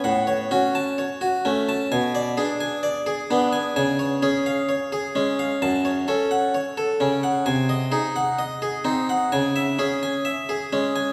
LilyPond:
\new Staff \with { instrumentName = "Harpsichord" } { \time 4/4 \key fis \minor \tempo 4 = 65 << { fis''16 cis''16 fis'16 a''16 cis''16 fis'16 a16 a''16 gis''16 d''16 gis'16 gis''16 d''16 gis'16 b16 gis''16 | gis''16 cis''16 gis'16 eis''16 cis''16 gis'16 gis16 eis''16 a''16 cis''16 a'16 fis''16 cis''16 a'16 cis16 fis''16 | gis''16 dis''16 gis'16 fis''16 dis''16 gis'16 bis16 fis''16 gis''16 e''16 gis'16 gis''16 e''16 gis'16 gis16 gis''16 | } \\ { a,8 cis'8 r8 cis'8 b,8 d'8 r8 d'8 | cis8 cis'8 r8 cis'8 fis,8 cis'8 r8 cis'8 | bis,8 dis'8 r8 dis'8 cis8 cis'8 r8 cis'8 | } >> }